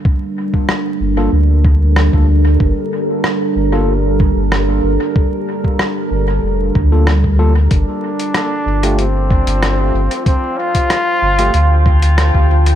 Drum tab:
HH |----------------|----------------|----------------|x--xx--xx--xx--x|
SD |----r-------r---|----r-------r---|----r-------r---|----r-------r---|
BD |o--o------o--o--|o---------o-----|o--o------o--o--|o---------o-----|

HH |x--xx--xx--xx--x|
SD |----r-------r---|
BD |o--o------o--o--|